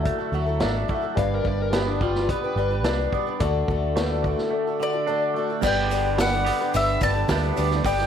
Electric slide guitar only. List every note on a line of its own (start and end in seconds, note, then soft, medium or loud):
1.19 1.32 F5 medium
1.34 1.47 A#4 medium
1.47 1.60 D5 medium
1.62 1.74 A#4 medium
1.74 1.87 G4 medium
1.87 2.01 D4 medium
2.02 2.29 F4 medium
2.31 2.84 B4 medium